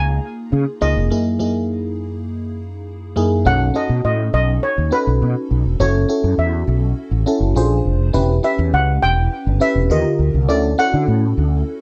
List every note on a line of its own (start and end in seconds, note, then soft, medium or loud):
0.00 0.18 C#2 medium
0.00 0.81 A#3 medium
0.00 0.81 D#4 medium
0.00 0.81 F4 medium
0.00 0.82 G#4 medium
0.00 0.49 G#5 loud
0.52 0.64 C#3 loud
0.81 0.93 C#2 medium
0.81 1.00 A#3 medium
0.81 1.00 D#4 medium
0.81 1.00 F4 medium
0.81 1.00 G#4 medium
0.81 2.53 D#5 loud
0.96 1.08 F1 medium
1.10 1.29 F#2 medium
1.10 1.29 A#3 medium
1.10 1.30 D#4 medium
1.10 1.30 E4 medium
1.10 1.30 G#4 medium
1.39 2.15 F#2 medium
1.39 2.15 A#3 medium
1.39 2.16 D#4 medium
1.39 2.16 E4 medium
1.39 2.16 G#4 medium
3.16 3.35 F#2 medium
3.16 3.35 A#3 medium
3.16 3.35 D#4 medium
3.16 3.35 E4 medium
3.16 3.35 G#4 loud
3.45 3.70 B1 loud
3.45 3.64 C#4 medium
3.45 3.64 D#4 medium
3.45 3.64 F#4 medium
3.45 3.65 A4 medium
3.45 3.76 F#5 loud
3.74 4.50 C#4 medium
3.74 4.51 D#4 medium
3.74 4.51 F#4 medium
3.74 4.51 A4 medium
3.74 4.04 D#5 medium
3.89 4.01 B2 medium
4.04 4.28 A2 medium
4.04 4.33 D#5 medium
4.33 4.57 B1 medium
4.33 4.64 D#5 loud
4.63 4.93 C#5 medium
4.78 4.89 D#2 medium
4.91 5.48 C#4 medium
4.91 5.49 D#4 medium
4.91 5.49 F#4 medium
4.91 5.49 A4 medium
4.91 5.83 B4 loud
5.07 5.19 B1 medium
5.22 5.33 B2 loud
5.50 5.63 B1 medium
5.65 5.77 E1 medium
5.79 6.04 F#1 loud
5.79 5.99 C#4 medium
5.79 5.99 E4 medium
5.79 5.99 F#4 medium
5.79 5.99 A4 medium
5.79 6.40 C#5 medium
6.09 6.85 C#4 medium
6.09 6.85 E4 medium
6.09 6.85 F#4 medium
6.09 6.85 A4 medium
6.23 6.36 F#2 medium
6.38 6.62 E2 medium
6.38 7.52 E5 medium
6.67 6.92 B1 loud
7.11 7.23 A1 medium
7.26 7.56 C#4 loud
7.26 7.56 E4 medium
7.26 7.56 F#4 medium
7.26 7.56 A4 loud
7.40 7.53 F#1 medium
7.55 7.79 A#1 loud
7.55 8.03 D4 medium
7.55 8.03 F4 medium
7.55 8.03 G#4 medium
7.55 8.04 C5 loud
7.85 8.09 F1 medium
8.13 8.38 E1 loud
8.13 8.33 C#4 medium
8.13 8.33 E4 loud
8.13 8.33 G4 medium
8.13 8.33 B4 loud
8.43 9.19 C#4 medium
8.43 9.19 E4 medium
8.43 9.20 G4 medium
8.43 9.20 B4 medium
8.43 8.71 E5 medium
8.58 8.70 E2 loud
8.73 8.97 C#2 loud
8.73 8.87 F#5 medium
9.03 9.27 E1 loud
9.03 9.63 G5 loud
9.46 9.59 G1 medium
9.60 9.90 C#4 medium
9.60 9.90 E4 medium
9.60 9.89 G4 medium
9.60 9.90 B4 medium
9.60 9.92 E5 loud
9.75 9.88 E1 medium
9.90 10.02 D#2 loud
9.90 10.37 D3 medium
9.90 10.37 F4 medium
9.90 10.37 G4 medium
9.90 10.38 A#4 medium
9.90 10.51 D#5 medium
10.19 10.31 D2 medium
10.34 10.49 C2 medium
10.49 10.73 D2 loud
10.49 10.68 C#4 medium
10.49 10.68 E4 medium
10.49 10.68 F#4 medium
10.49 10.69 A4 medium
10.49 10.79 D5 medium
10.78 11.54 C#4 medium
10.78 11.55 E4 medium
10.78 11.55 F#4 medium
10.78 11.55 A4 medium
10.78 11.81 F#5 medium
10.93 11.05 D3 medium
11.07 11.32 A2 loud
11.37 11.61 D2 medium